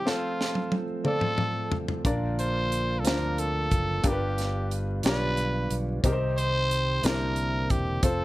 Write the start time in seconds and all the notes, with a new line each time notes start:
Already playing: G4
0.06 F3 A3 C4 F4 A4 C5, snare
0.41 snare
0.55 high tom
0.72 high tom
1.04 C4 F4 A4 D5, mid tom
1.21 mid tom
1.38 mid tom
1.72 floor tom
1.88 floor tom
2.05 A#1 A#2 D3 A#3 D4 F4 A#4 D5, kick, closed hi-hat
2.39 C5, closed hi-hat
2.72 closed hi-hat
2.99 A4
3.04 D2 A#3 C4 F4 A#4 C5, snare, closed hi-hat
3.11 D4
3.38 A4, closed hi-hat
3.71 F#1, kick, closed hi-hat
4.02 G1 G2 D3 G3 B3 D4 F4 G4 A#4, kick, closed hi-hat
4.08 G4
4.12 B4
4.38 snare, closed hi-hat
4.71 closed hi-hat
5.03 B1 D4 F4 G4 B4 C#5, snare, closed hi-hat
5.13 D5
5.37 closed hi-hat
5.70 B1, closed hi-hat
6.02 C2 C3 D#3 G3 C4 D#4 G4 A#4, kick, closed hi-hat
6.12 C5
6.38 C5, closed hi-hat
6.71 closed hi-hat
7.02 C2 C3 D3 A#3 C4 D4 E4 A#4 C5, snare, closed hi-hat
7.36 closed hi-hat
7.70 E1 G4, kick, closed hi-hat
8.03 F1 F3 A3 C4 F4 A4 C5, kick, closed hi-hat